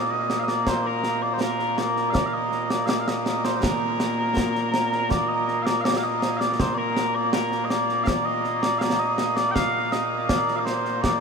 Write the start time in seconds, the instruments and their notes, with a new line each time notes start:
Already playing: bagpipes A#2 A#3 D5
0.11 bagpipes D#5
0.30 snare
0.39 bagpipes F5
0.43 bagpipes D#5
0.48 bagpipes D5, snare
0.67 bagpipes C5, concert bass drum, snare
0.79 bagpipes C5
0.86 bagpipes A#4
1.04 snare
1.22 bagpipes D5
1.33 bagpipes C5
1.41 bagpipes A#4, snare
1.59 snare
1.78 bagpipes D5, snare
1.97 snare
2.10 bagpipes F5
2.14 bagpipes D5, concert bass drum, snare
2.26 bagpipes F5
2.33 bagpipes D#5
2.52 snare
2.70 bagpipes D5, snare
2.86 bagpipes D5 F5, snare
3.00 bagpipes F5
3.08 bagpipes D#5, snare
3.26 snare
3.45 bagpipes C5, snare
3.56 bagpipes C5
3.63 bagpipes A#4, concert bass drum, snare
4.00 snare
4.37 concert bass drum, snare
4.55 snare
4.74 snare
4.93 snare
5.10 bagpipes D5, concert bass drum, snare
5.28 bagpipes D#5
5.48 snare
5.62 bagpipes D5 F5
5.67 snare
5.81 bagpipes D5 F5
5.85 snare
5.97 bagpipes F5
6.03 bagpipes D#5
6.22 snare
6.37 bagpipes D5 F5
6.41 snare
6.60 bagpipes C5, concert bass drum, snare
6.74 bagpipes A#4 D5
6.97 snare
7.15 bagpipes D5
7.33 bagpipes A#4, snare
7.52 snare
7.64 bagpipes D#5
7.70 bagpipes D5, snare
7.89 snare
8.04 bagpipes D5 F5, concert bass drum, snare
8.25 bagpipes D#5
8.44 snare
8.63 bagpipes D5, snare
8.79 bagpipes D5 F5, snare
9.00 bagpipes D#5
9.18 snare
9.36 bagpipes D5, snare
9.51 bagpipes F5 G5
9.56 concert bass drum, snare
9.92 bagpipes D#5, snare
10.29 bagpipes D5, concert bass drum, snare
10.48 snare
10.56 bagpipes D5 F5
10.65 bagpipes C5, snare
10.85 snare
11.02 bagpipes D5, concert bass drum, snare